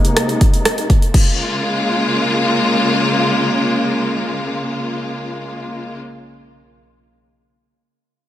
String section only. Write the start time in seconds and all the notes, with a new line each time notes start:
Already playing: C3 G#3 A#3 D#4
1.14 C#3 G#3 A#3 F4